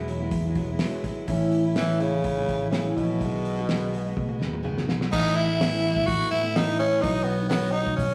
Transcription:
Already playing: E1
0.08 F#3 G#3 B3 E4, open hi-hat
0.19 F#3 G#3 B3 E4
0.31 E2, kick, open hi-hat
0.45 F#3 G#3 B3 E4
0.55 E1 F#3 G#3 B3 E4, kick, open hi-hat
0.71 F#3 G#3 B3 E4
0.79 E2 B2 F#3 G#3, snare, open hi-hat
0.83 B3 E4
1.04 G#1 F#3 G#3 B3 E4, kick, open hi-hat
1.27 A1 A2 E3 A3 C#4 E4, kick, open hi-hat
1.52 open hi-hat
1.64 A3 C#4 E4
1.76 A2 E3 A3 C#4 E4, snare, open hi-hat
1.99 C#3 E3 A3 C#4 E4, open hi-hat
2.13 A3 C#4 E4
2.24 A1, kick, open hi-hat
2.37 A3 C#4 E4
2.48 A1 E3 A3 C#4, kick, open hi-hat
2.52 E4
2.63 A3 C#4 E4
2.70 C#3, snare, open hi-hat
2.75 A2 E3 A3 C#4 E4
2.96 A#1 B2 E3, kick, open hi-hat
3.00 A3 C#4 E4
3.20 B1 B2 D#3 G#3 B3, kick, open hi-hat
3.24 F#4
3.45 open hi-hat
3.59 G#3 B3 F#4
3.69 B2 D#3 G#3 B3 F#4, snare, open hi-hat
3.94 D#3 G#3 B3 F#4, open hi-hat
4.06 G#3 B3 F#4
4.17 B2, kick, high tom
4.29 G#3 B3 F#4, high tom
4.39 D#2 D#3 G#3 B3 F#4, snare
4.53 mid tom
4.63 C#2 B2 D#3 G#3 B3 F#4, mid tom
4.78 snare
4.86 B1 D#3 G#3 B3 F#4, snare
5.01 snare
5.10 A1 A2 E3 A3 B3 D#4 E4, kick, crash
5.37 E4
5.46 A3 B3 E4
5.59 A2 E3 A3 B3 E4, snare, open hi-hat
5.83 E3 A3 B3 E4, snare
5.96 A1 A3 B3 E4, kick
6.06 A1 F#4, kick, open hi-hat
6.19 A3 B3 E4
6.31 A2 E3 A3 B3 E4
6.43 A3 B3 E4
6.55 A2 E3 A3 B3 D#4 E4, snare, open hi-hat
6.79 E3 A3 B3 C#4 E4
7.01 B1 B3 D#4 F#4 C#5, kick, open hi-hat
7.24 B3
7.38 D#4 F#4 C#5
7.49 B3 D#4 F#4 C#5, snare, open hi-hat
7.72 B3 D#4
7.76 D#4 F#4 C#5
7.86 B1 D#4 F#4 C#5, kick
7.97 B1 C#4, kick, open hi-hat
8.10 F#4 C#5

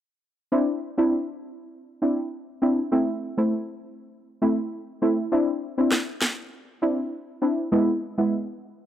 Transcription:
0.52 C4 D4 E4
0.98 C4 D4 E4
2.02 C4 D4 E4
2.62 C4 D4 E4
2.92 A3 C4 E4
3.37 A3 C4 E4
4.42 A3 C4 E4
5.02 A3 C4 E4
5.32 C4 D4 E4
5.78 C4 D4 E4
5.92 snare
6.22 snare
6.82 C4 D4 E4
7.42 C4 D4 E4
7.72 G#3 B3 E4
8.18 G#3 B3 E4

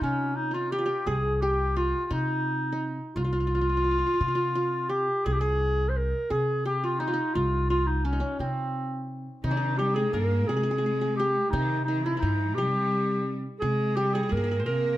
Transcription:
Already playing: D#4 F4
0.01 C3 C#4
0.36 D#4
0.51 D#4 F4
0.71 G4
0.78 F4
0.86 G4
1.06 C2 G#4
1.35 G#4
1.41 G4
1.76 F4
2.05 F4
2.10 C3 D#4
2.72 D#4
3.16 C2 F4
3.24 F4
3.33 F4
3.40 F4
3.47 F4
3.55 F4
3.61 F4
3.69 F4
3.77 F4
3.84 F4
3.91 F4
3.98 F4
4.06 F4
4.14 F4
4.21 C3 F4
4.28 F4
4.35 F4
4.55 F4
4.89 G4
5.25 C2 G#4
5.33 G4
5.40 G#4
5.89 C5
5.96 A#4
6.30 C3 G#4
6.65 G4
6.83 F4
6.99 D#4
7.07 F4
7.13 D#4
7.34 C2 F4
7.69 F4
7.86 D#4
8.05 C#4
8.13 D#4
8.20 C#4
8.39 C3 C4
9.43 C3 D#3 D#4
9.51 D4
9.57 D#4
9.77 G3 G4
9.95 G#3 G#4
10.13 G2 A#3 A#4
10.47 C3 G#3 G#4
10.57 G#4
10.63 G#4
10.71 G#4
10.78 G#4
10.86 G#4
11.01 G#4
11.16 G4
11.50 C3 D#3 D#4
11.85 D#3 D#4
12.03 E3 E4
12.17 D#4 E4
12.22 G2 D#4
12.55 C3 G3 G4
13.60 C3 G#3 G#4
13.96 G3 G4
14.14 G#4
14.23 G#4
14.29 G2 A#3 G#4 A#4
14.37 G#4
14.44 G#4
14.51 G#4
14.60 C5
14.65 C3 A#3 A#4

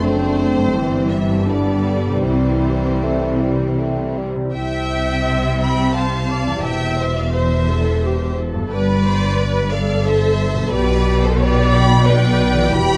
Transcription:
Already playing: F#2 A3 D4 A4
0.01 F#1 F#2 A3 C4 D4 C5
0.56 G2
0.60 C4
0.65 E4
0.69 G2 C4 G4
0.73 G1 E3 G3 C4 E4
1.09 E4 E5
1.31 G2
1.35 B3
1.39 D4
1.44 G3 B3 D4 G4
1.48 D3 B3 D5
2.06 C3
2.11 C4
2.15 E4
2.20 C3 C4 G4
2.24 C2 E3 C4 E4 C5
3.03 A3
3.41 G3
3.79 A3
4.17 G3
4.36 C3
4.40 C4
4.45 E4
4.50 G4 G5
4.54 C2 C3 E5
5.60 G5 B5
5.95 C5 F5 A5
6.31 D5
6.47 E2
6.52 C4
6.56 G4
6.65 E1 E2 E5 G5
6.99 C5 E5
7.17 D5 F5
7.33 C5 E5
7.69 A4
8.05 G4
8.39 A4
8.54 G2
8.59 B3
8.63 D4
8.67 G4 B4 D5
8.72 G1 G2 B4
9.07 C5
9.40 B4
9.71 A4 D5 F5
10.06 C5 E5
10.54 B2
10.58 B3
10.63 D4
10.67 G4
10.72 B1 B2 G4 B4 D5
11.22 A4 C5
11.40 G4 B4 D5
11.74 G5 B5
12.06 B4 D5 G5
12.54 E3
12.59 B3
12.63 E4
12.68 G4 G5
12.72 E1 E2 G4 B5

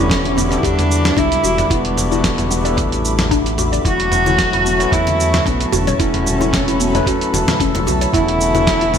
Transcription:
Already playing: E1 D3 G3 B3 C#4 D4 A4 E5 B5 D6
0.00 E4 F#4
0.10 A4, kick, snare, closed hi-hat, shaker
0.24 E4, closed hi-hat
0.37 B3, mid tom, shaker
0.49 G3 B3 D4 E4 A4 D5, closed hi-hat, shaker
0.58 E4
0.63 E2 D4 G4, kick, closed hi-hat, shaker
0.79 closed hi-hat, mid tom, shaker
0.91 shaker
1.05 snare, closed hi-hat, shaker
1.17 B1 D4 E4, kick, closed hi-hat, mid tom, shaker
1.32 closed hi-hat, shaker
1.44 E1 F#4, shaker
1.58 D5, closed hi-hat, mid tom, shaker
1.69 E1 G3 B3 D4 E4 F#4, kick, closed hi-hat, shaker
1.85 closed hi-hat
1.98 mid tom, shaker
2.11 G3 B3 D4 E4 F#4, shaker
2.24 A4, kick, snare, closed hi-hat, shaker
2.38 E4, closed hi-hat, mid tom, shaker
2.50 B3, shaker
2.63 G3 B3 D4 E4 D5, closed hi-hat, shaker
2.67 A4
2.77 A1 G4, kick, closed hi-hat, mid tom, shaker
2.92 closed hi-hat, shaker
3.05 shaker
3.19 snare, closed hi-hat, mid tom, shaker
3.31 D4, kick, closed hi-hat, shaker
3.46 closed hi-hat, shaker
3.58 F#4, mid tom, shaker
3.72 D5, closed hi-hat, shaker
3.84 E1 F#3 A3 C#4 E4 F#4 A4 A5 C#6, kick, closed hi-hat, shaker
4.00 closed hi-hat
4.12 mid tom, shaker
4.25 F#3 A3 C#4 E4 F#4, muted conga, high conga, shaker
4.38 A4, kick, snare, closed hi-hat, shaker
4.53 E4, closed hi-hat, mid tom
4.65 B3, shaker
4.78 F#3 A3 C#4 E4 B4 C#5, closed hi-hat, shaker
4.92 E2 E4 F#4, kick, closed hi-hat, mid tom, shaker
5.07 closed hi-hat, muted conga, high conga, shaker
5.20 shaker
5.34 snare, closed hi-hat, mid tom, high conga, shaker
5.46 B1 B3 C#4, kick, closed hi-hat, shaker
5.61 closed hi-hat, shaker
5.72 E1 C#4 F#4, mid tom, high conga, shaker
5.87 C#5, closed hi-hat, low conga, shaker
5.99 E1 F#3 A3 C#4 E4 F#4 B5, kick, closed hi-hat, shaker
6.14 closed hi-hat, mid tom
6.26 low conga, shaker
6.39 F#3 A3 C#4 E4 F#4, muted conga, high conga, shaker
6.53 A4, kick, snare, closed hi-hat, mid tom, low conga, shaker
6.68 E4, closed hi-hat, shaker
6.80 B3, shaker
6.92 F#3 A3 C#4 E4 C#5, closed hi-hat, mid tom, shaker
6.96 B4
7.06 F#4, kick, closed hi-hat, shaker
7.21 closed hi-hat, shaker
7.33 E1, mid tom, muted conga, shaker
7.48 snare, closed hi-hat, high conga, low conga, shaker
7.60 E1 C#4, kick, closed hi-hat, shaker
7.75 closed hi-hat, mid tom, muted conga, high conga, shaker
7.87 B1 F#4, muted conga, high conga, shaker
8.01 C#5, closed hi-hat, muted conga, shaker
8.13 E1 D3 A3 B3 C#4 E4 F#4 B4, kick, closed hi-hat, mid tom, shaker
8.28 closed hi-hat
8.41 shaker
8.54 D3 A3 B3 C#4 E4 F#4, mid tom, muted conga, high conga, shaker
8.67 A4, kick, snare, closed hi-hat, shaker
8.81 E4, closed hi-hat
8.94 B3, mid tom, shaker

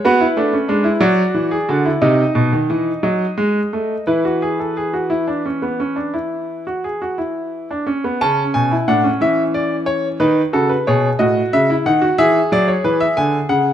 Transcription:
0.05 B3 F#4 B4
0.20 E4
0.37 A3 D4
0.53 C#4
0.69 G#3 D4
0.84 E4
1.00 F#3 F#4 D5
1.34 E3
1.51 G#4
1.69 D3 F#4
1.85 E4
2.01 C3 D#4 D#5
2.35 B2
2.53 D#3
2.70 E3
3.03 F#3 D#5
3.38 G#3
3.73 A3
4.07 E3 E4 B4
4.25 F#4
4.42 G#4
4.60 A4
4.77 G#4
4.93 F#4
5.10 E4
5.27 D4
5.46 C#4
5.62 B3
5.80 C#4
5.96 D4
6.14 E4
6.67 F#4
6.84 G#4
7.02 F#4
7.18 E4
7.71 D4
7.87 C#4
8.04 B3
8.21 C#3 C#4 A5
8.54 B2 G#5
8.72 E4
8.88 A2 D4 F#5
9.04 C#4
9.21 E3 E5
9.54 D5
9.86 C#5
10.20 D#3 D#4 B4
10.53 C#3 F#4 A4
10.69 B4
10.87 B2 G#4 C#5
11.19 A2 F#4 D#5
11.53 C#3 E5
11.70 E4
11.86 D#3 D#4 F#5
12.02 F#4
12.18 E3 G#4 E5
12.52 F#3 D5
12.68 C#5
12.84 E3 B4
13.00 E5
13.17 D3 G#5
13.49 C#3 F#5

